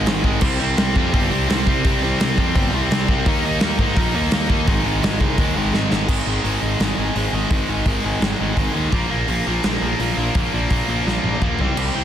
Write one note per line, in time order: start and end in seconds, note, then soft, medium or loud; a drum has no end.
0.00 0.43 D#4 medium
0.06 0.23 G#1 loud
0.06 0.22 G#2 medium
0.06 0.23 D#3 loud
0.06 0.24 G#3 medium
0.06 snare loud
0.06 open hi-hat medium
0.24 0.40 G#1 medium
0.24 0.41 G#2 medium
0.24 0.41 D#3 medium
0.24 0.41 G#3 medium
0.24 kick medium
0.41 0.58 C2 loud
0.41 0.59 C3 loud
0.41 0.60 G3 loud
0.41 0.60 C4 loud
0.41 kick loud
0.41 crash loud
0.60 0.76 C2 medium
0.60 0.78 C3 medium
0.60 0.78 G3 medium
0.60 0.79 C4 loud
0.77 0.94 C2 loud
0.77 0.96 C3 medium
0.77 0.96 G3 medium
0.77 0.97 C4 loud
0.77 snare loud
0.77 open hi-hat medium
0.96 1.12 F2 loud
0.96 1.12 C3 medium
0.96 1.13 G3 loud
0.96 1.13 C4 medium
0.96 kick medium
1.13 1.30 G1 loud
1.13 1.29 C3 loud
1.13 1.30 G3 loud
1.13 1.30 C4 loud
1.13 kick loud
1.13 open hi-hat medium
1.30 1.47 C2 loud
1.30 1.47 C3 medium
1.30 1.49 G3 medium
1.30 1.48 C4 medium
1.48 1.65 C2 medium
1.48 1.66 C3 medium
1.48 1.67 G3 medium
1.48 1.67 C4 loud
1.48 snare loud
1.48 open hi-hat medium
1.67 1.83 C2 medium
1.67 1.84 C3 medium
1.67 1.85 G3 medium
1.67 1.85 C4 loud
1.67 kick medium
1.84 2.00 C2 loud
1.84 2.01 C3 loud
1.84 2.03 G3 loud
1.84 2.02 C4 loud
1.84 kick loud
1.84 open hi-hat medium
2.02 2.18 C2 medium
2.02 2.19 C3 medium
2.02 2.21 G3 loud
2.02 2.20 C4 loud
2.20 2.36 C2 medium
2.20 2.37 C3 medium
2.20 2.39 G3 medium
2.20 2.38 C4 medium
2.20 snare loud
2.20 open hi-hat medium
2.38 2.53 F2 medium
2.38 2.54 C3 medium
2.38 2.55 G3 medium
2.38 2.55 C4 loud
2.38 kick medium
2.55 2.71 G1 loud
2.55 2.73 C3 loud
2.55 2.73 G3 loud
2.55 2.73 C4 loud
2.55 kick loud
2.55 open hi-hat medium
2.73 2.89 C2 loud
2.73 2.90 C3 medium
2.73 2.91 G3 medium
2.73 2.92 C4 loud
2.91 3.07 C2 medium
2.91 3.08 C3 medium
2.91 3.09 G3 medium
2.91 3.09 C4 medium
2.91 snare loud
2.91 open hi-hat medium
3.08 3.24 C2 medium
3.08 3.25 C3 medium
3.08 3.26 G3 loud
3.08 3.26 C4 loud
3.08 kick loud
3.26 3.42 D#2 loud
3.26 3.43 D#3 loud
3.26 3.44 A#3 loud
3.26 3.45 D#4 loud
3.26 kick loud
3.26 open hi-hat medium
3.44 3.60 D#2 medium
3.44 3.60 D#3 medium
3.44 3.61 A#3 medium
3.44 3.62 D#4 loud
3.60 3.77 D#2 medium
3.60 3.78 D#3 medium
3.60 3.79 A#3 medium
3.60 3.80 D#4 medium
3.60 snare loud
3.60 open hi-hat medium
3.79 3.95 G#2 medium
3.79 3.95 D#3 medium
3.79 3.96 A#3 medium
3.79 3.97 D#4 loud
3.79 kick medium
3.96 4.13 A#1 loud
3.96 4.13 D#3 medium
3.96 4.14 A#3 loud
3.96 4.15 D#4 loud
3.96 kick loud
3.96 open hi-hat medium
4.15 4.31 D#2 medium
4.15 4.31 D#3 medium
4.15 4.32 A#3 loud
4.15 4.33 D#4 loud
4.31 4.48 D#2 loud
4.31 4.48 D#3 medium
4.31 4.48 A#3 loud
4.31 4.50 D#4 loud
4.31 snare loud
4.31 open hi-hat medium
4.49 4.66 D#2 loud
4.49 4.66 D#3 medium
4.49 4.66 A#3 medium
4.49 8.00 D#4 loud
4.49 kick medium
4.67 4.83 G#1 loud
4.67 4.84 G#2 medium
4.67 4.85 D#3 loud
4.67 4.85 G#3 loud
4.67 kick loud
4.67 open hi-hat medium
4.85 5.01 G#1 medium
4.85 5.01 G#2 medium
4.85 5.02 D#3 medium
4.85 5.02 G#3 medium
5.02 5.19 G#1 medium
5.02 5.19 G#2 medium
5.02 5.19 D#3 medium
5.02 5.20 G#3 medium
5.02 snare loud
5.02 open hi-hat medium
5.20 5.37 C2 loud
5.20 5.37 G#2 medium
5.20 5.38 D#3 loud
5.20 5.38 G#3 medium
5.20 kick medium
5.38 5.54 D#2 loud
5.38 5.55 G#2 loud
5.38 5.55 D#3 medium
5.38 5.56 G#3 loud
5.38 kick loud
5.38 open hi-hat medium
5.55 5.72 G#1 medium
5.55 5.72 G#2 medium
5.55 5.73 D#3 medium
5.55 5.73 G#3 loud
5.73 5.90 G#1 medium
5.73 5.89 G#2 medium
5.73 5.89 D#3 medium
5.73 5.89 G#3 medium
5.73 snare medium
5.90 6.07 G#1 loud
5.90 6.07 G#2 medium
5.90 6.07 D#3 medium
5.90 6.08 G#3 medium
5.90 snare loud
6.08 6.21 G#1 medium
6.08 6.27 G#2 medium
6.08 6.26 D#3 loud
6.08 6.27 G#3 loud
6.08 kick loud
6.08 crash loud
6.27 6.38 G#1 medium
6.27 6.43 G#2 medium
6.27 6.43 D#3 medium
6.27 6.44 G#3 medium
6.44 6.56 G#1 medium
6.44 6.61 G#2 medium
6.44 6.61 D#3 loud
6.44 6.63 G#3 loud
6.44 open hi-hat medium
6.62 6.74 G#1 medium
6.62 6.79 G#2 medium
6.62 6.80 D#3 medium
6.62 6.80 G#3 medium
6.80 6.92 G#1 medium
6.80 6.96 G#2 medium
6.80 6.97 D#3 medium
6.80 6.97 G#3 loud
6.80 snare loud
6.80 open hi-hat medium
6.98 7.10 G#1 medium
6.98 7.14 G#2 medium
6.98 7.15 D#3 medium
6.98 7.15 G#3 loud
7.15 7.27 G#1 medium
7.15 7.33 G#2 loud
7.15 7.33 D#3 medium
7.15 7.33 G#3 loud
7.15 open hi-hat medium
7.32 7.45 G#1 medium
7.32 7.50 G#2 medium
7.32 7.50 D#3 medium
7.32 7.50 G#3 medium
7.51 7.63 G#1 medium
7.51 7.67 G#2 medium
7.51 7.68 D#3 medium
7.51 7.68 G#3 loud
7.51 kick loud
7.51 open hi-hat medium
7.68 7.80 G#1 medium
7.68 7.86 G#2 medium
7.68 7.86 D#3 medium
7.68 7.86 G#3 medium
7.86 7.98 G#1 medium
7.86 8.04 G#2 medium
7.86 8.05 D#3 loud
7.86 8.05 G#3 loud
7.86 kick medium
7.86 open hi-hat medium
8.04 8.16 G#1 medium
8.04 8.22 G#2 medium
8.04 8.22 D#3 medium
8.04 8.23 G#3 loud
8.21 8.34 G#1 loud
8.21 8.40 G#2 medium
8.21 8.39 D#3 loud
8.21 8.40 G#3 loud
8.21 snare loud
8.21 open hi-hat medium
8.40 8.52 G#1 medium
8.40 8.56 G#2 medium
8.40 8.57 D#3 loud
8.40 8.57 G#3 loud
8.57 8.69 G#1 medium
8.57 8.73 G#2 medium
8.57 8.74 D#3 loud
8.57 8.74 G#3 loud
8.57 kick medium
8.57 open hi-hat medium
8.75 8.87 D#2 medium
8.75 8.92 G#2 medium
8.75 8.92 D#3 medium
8.75 8.92 G#3 medium
8.92 9.04 A#1 loud
8.92 9.10 A#2 medium
8.92 9.10 F3 medium
8.92 9.11 A#3 loud
8.92 kick loud
8.92 open hi-hat medium
9.10 9.23 A#1 medium
9.10 9.28 A#2 medium
9.10 9.29 F3 medium
9.10 9.29 A#3 medium
9.28 9.40 A#1 medium
9.28 9.45 A#2 loud
9.28 9.46 F3 loud
9.28 9.46 A#3 loud
9.28 open hi-hat medium
9.47 9.58 A#1 medium
9.47 9.63 A#2 medium
9.47 9.63 F3 medium
9.47 9.64 A#3 loud
9.63 9.76 A#1 loud
9.63 9.81 A#2 loud
9.63 9.81 F3 medium
9.63 9.82 A#3 loud
9.63 snare loud
9.63 open hi-hat medium
9.81 9.93 A#1 medium
9.81 9.99 A#2 medium
9.81 9.99 F3 medium
9.81 10.00 A#3 medium
9.99 10.11 A#1 medium
9.99 10.17 A#2 medium
9.99 10.17 F3 loud
9.99 10.18 A#3 loud
9.99 open hi-hat medium
10.17 10.29 A#1 medium
10.17 10.35 A#2 medium
10.17 10.36 F3 medium
10.17 10.36 A#3 medium
10.35 10.47 A#1 medium
10.35 10.53 A#2 medium
10.35 10.53 F3 medium
10.35 10.53 A#3 loud
10.35 kick loud
10.35 open hi-hat medium
10.53 10.65 A#1 medium
10.53 10.70 A#2 medium
10.53 10.71 F3 medium
10.53 10.71 A#3 medium
10.70 10.82 A#1 medium
10.70 10.88 A#2 medium
10.70 10.89 F3 medium
10.70 10.89 A#3 loud
10.70 kick medium
10.70 open hi-hat medium
10.88 11.00 A#1 medium
10.88 11.06 A#2 medium
10.88 11.06 F3 medium
10.88 11.07 A#3 medium
11.06 11.18 A#1 medium
11.06 11.24 A#2 loud
11.06 11.24 F3 loud
11.06 11.24 A#3 loud
11.06 snare medium
11.24 11.36 A#1 medium
11.24 11.42 A#2 medium
11.24 11.42 F3 medium
11.24 11.42 A#3 medium
11.24 high tom medium
11.42 11.54 A#1 medium
11.42 11.59 A#2 medium
11.42 11.59 F3 loud
11.42 11.59 A#3 loud
11.42 kick medium
11.42 mid tom medium
11.59 11.72 C2 medium
11.59 11.77 C3 medium
11.59 11.78 G3 medium
11.59 11.78 C4 medium
11.59 floor tom medium
11.77 11.89 C2 loud
11.77 11.94 C3 medium
11.77 11.95 G3 loud
11.77 11.95 C4 loud
11.77 crash loud
11.94 12.04 C2 medium
11.94 12.04 C3 medium
11.94 12.04 G3 medium
11.94 12.04 C4 medium